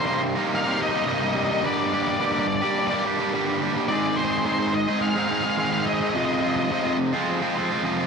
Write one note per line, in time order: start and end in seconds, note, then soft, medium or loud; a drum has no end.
0.00 0.37 C2 loud
0.00 0.37 G2 loud
0.06 0.23 G3 medium
0.06 0.23 A#3 medium
0.06 0.22 D#4 medium
0.06 0.13 C5 medium
0.10 0.21 C3 medium
0.10 0.21 C5 medium
0.23 muted overdriven electric guitar stroke soft
0.36 0.65 C3 medium
0.36 0.66 G3 medium
0.36 0.64 A#3 medium
0.36 0.63 D#4 medium
0.55 0.82 F5 loud
0.64 0.76 C3 medium
0.64 0.78 G3 medium
0.64 0.78 A#3 medium
0.64 0.79 D#4 medium
0.78 0.93 C3 medium
0.78 0.93 G3 medium
0.78 0.92 A#3 medium
0.78 0.90 D#4 medium
0.82 0.89 D#5 loud
0.90 1.08 G3 medium
0.90 1.07 A#3 medium
0.90 1.07 D#4 medium
0.90 0.97 D#5 medium
0.94 1.06 C3 medium
0.94 1.05 D#5 loud
1.06 1.49 C2 loud
1.06 1.49 G2 loud
1.06 1.22 C3 loud
1.06 1.22 G3 loud
1.06 1.20 A#3 loud
1.06 1.19 D#4 loud
1.06 1.13 D#5 medium
1.13 1.20 D#5 loud
1.20 1.33 C3 medium
1.20 1.35 G3 medium
1.20 1.35 A#3 medium
1.20 1.36 D#4 medium
1.20 1.28 D#5 loud
1.29 1.36 D#5 loud
1.34 1.62 C3 medium
1.34 1.64 G3 medium
1.34 1.63 A#3 medium
1.34 1.63 D#4 medium
1.34 1.43 D#5 medium
1.44 1.52 D#5 loud
1.52 1.60 D#5 medium
1.60 2.18 G2 loud
1.60 2.18 D3 medium
1.60 1.90 G3 loud
1.60 1.90 A#3 loud
1.60 1.91 D4 loud
1.60 1.66 D#5 medium
1.65 1.93 G4 loud
1.65 1.92 D5 loud
1.90 2.19 G3 medium
1.90 2.19 A#3 medium
1.90 2.19 D4 medium
1.90 2.21 G4 loud
1.90 2.01 D5 medium
2.02 2.08 D5 medium
2.08 2.16 D5 medium
2.17 2.62 G2 loud
2.17 2.62 D3 loud
2.17 2.35 G3 loud
2.17 2.33 A#3 loud
2.17 2.32 D4 loud
2.17 2.25 D5 medium
2.21 2.32 G4 loud
2.25 2.32 D5 medium
2.32 2.46 G3 medium
2.32 2.46 A#3 medium
2.32 2.46 D4 medium
2.32 2.47 G4 medium
2.32 2.39 D5 medium
2.39 2.47 D5 medium
2.47 2.55 D5 medium
2.47 muted overdriven electric guitar stroke medium
2.56 2.62 D5 medium
2.61 2.91 G3 medium
2.61 2.91 A#3 medium
2.61 2.90 D4 medium
2.61 2.89 G4 medium
2.61 2.70 D5 medium
2.70 2.78 D5 medium
2.79 2.86 D5 medium
2.87 3.06 D4 medium
2.87 3.06 G4 medium
2.87 2.94 D5 medium
2.92 3.03 G3 medium
2.92 3.05 A#3 medium
2.92 3.02 D5 medium
3.05 3.20 G3 medium
3.05 3.19 A#3 medium
3.05 3.18 D4 medium
3.05 3.17 G4 medium
3.19 3.33 G3 medium
3.19 3.33 A#3 medium
3.19 3.33 D4 medium
3.19 3.34 G4 medium
3.33 3.75 G2 loud
3.33 3.75 D3 loud
3.33 3.48 G3 loud
3.33 3.47 A#3 loud
3.33 3.46 D4 loud
3.33 3.46 G4 loud
3.47 3.59 G3 medium
3.47 3.60 A#3 medium
3.47 3.62 D4 medium
3.47 3.62 G4 medium
3.61 3.87 G3 medium
3.61 3.88 A#3 medium
3.61 3.88 D4 medium
3.61 3.89 G4 medium
3.88 4.44 G#2 loud
3.88 4.44 D#3 loud
3.88 4.16 G#3 loud
3.88 4.18 C4 loud
3.88 4.19 D#4 loud
3.88 4.19 G#4 loud
3.88 4.18 D5 loud
4.16 4.46 G#3 medium
4.16 4.46 C4 loud
4.16 4.46 D#4 medium
4.16 4.46 G#4 medium
4.16 4.23 C5 loud
4.25 4.30 C5 medium
4.31 4.38 C5 loud
4.38 4.45 C5 medium
4.44 5.57 G#2 loud
4.44 4.88 D#3 loud
4.44 4.62 G#3 loud
4.44 4.61 C4 loud
4.44 4.60 D#4 loud
4.44 4.59 G#4 loud
4.44 4.52 C5 loud
4.52 4.59 C5 medium
4.59 4.73 G#3 medium
4.59 4.74 C4 medium
4.59 4.74 D#4 medium
4.59 4.74 G#4 medium
4.59 4.66 C5 medium
4.67 4.75 C5 medium
4.74 5.01 D#5 loud
4.74 muted overdriven electric guitar stroke medium
4.87 5.17 G#3 medium
4.87 5.17 C4 medium
4.87 5.16 D#4 medium
4.87 5.14 G#4 medium
5.01 5.08 F5 loud
5.09 5.17 F5 loud
5.15 5.27 G#3 medium
5.15 5.29 C4 medium
5.15 5.30 D#4 medium
5.15 5.30 G#4 medium
5.15 5.25 F5 loud
5.25 5.45 G#3 medium
5.25 5.32 F5 loud
5.30 5.45 C4 medium
5.30 5.44 D#4 medium
5.30 5.42 G#4 medium
5.30 5.40 F5 loud
5.40 5.59 D#4 medium
5.40 5.58 G#4 medium
5.40 5.48 F5 loud
5.45 5.57 G#3 medium
5.45 5.58 C4 medium
5.50 5.57 F5 loud
5.57 6.00 G#2 loud
5.57 6.00 D#3 loud
5.57 5.73 G#3 loud
5.57 5.73 C4 loud
5.57 5.72 D#4 loud
5.57 5.71 G#4 loud
5.57 5.64 F5 medium
5.65 5.72 F5 loud
5.72 5.85 G#3 medium
5.72 5.86 C4 medium
5.72 5.88 D#4 medium
5.72 5.87 G#4 medium
5.72 5.80 F5 medium
5.81 5.86 F5 loud
5.86 6.13 G#3 medium
5.86 6.15 C4 medium
5.86 6.15 D#4 medium
5.86 6.14 G#4 medium
5.86 5.94 D#5 loud
5.94 6.01 D#5 medium
6.01 6.09 D#5 medium
6.09 6.17 D#5 medium
6.14 6.69 F2 loud
6.14 6.70 C3 loud
6.14 6.40 F3 loud
6.14 6.42 G#3 loud
6.14 6.42 C4 loud
6.14 6.43 F4 loud
6.14 6.25 D#5 loud
6.25 6.33 D#5 medium
6.34 6.40 D#5 loud
6.41 6.70 F3 medium
6.41 6.71 G#3 medium
6.41 6.72 C4 loud
6.41 6.72 F4 medium
6.41 6.48 D#5 medium
6.48 6.56 D#5 loud
6.56 6.64 D#5 medium
6.64 6.71 D#5 medium
6.70 7.13 F2 loud
6.70 7.14 C3 loud
6.70 6.86 F3 loud
6.70 6.85 G#3 loud
6.70 6.85 C4 loud
6.70 6.84 F4 loud
6.70 6.79 D#5 medium
6.80 6.87 D#5 medium
6.85 6.98 F3 medium
6.85 6.98 G#3 medium
6.85 6.98 C4 medium
6.85 6.99 F4 medium
6.85 6.95 D#5 medium
6.99 muted overdriven electric guitar stroke medium
7.13 7.43 F3 medium
7.13 7.42 G#3 medium
7.13 7.41 C4 medium
7.13 7.40 F4 medium
7.41 7.54 F3 medium
7.41 7.56 G#3 medium
7.41 7.56 C4 medium
7.41 7.57 F4 medium
7.56 7.71 F3 medium
7.56 7.70 G#3 medium
7.56 7.70 C4 medium
7.56 7.68 F4 medium
7.70 7.83 F3 medium
7.70 7.84 G#3 medium
7.70 7.85 C4 medium
7.70 7.85 F4 medium
7.83 8.07 F2 loud
7.83 8.07 C3 loud
7.83 7.99 F3 loud
7.83 7.99 G#3 loud
7.83 7.98 C4 loud
7.83 7.97 F4 loud
7.98 8.07 F3 medium
7.98 8.07 G#3 medium
7.98 8.07 C4 medium
7.98 8.07 F4 medium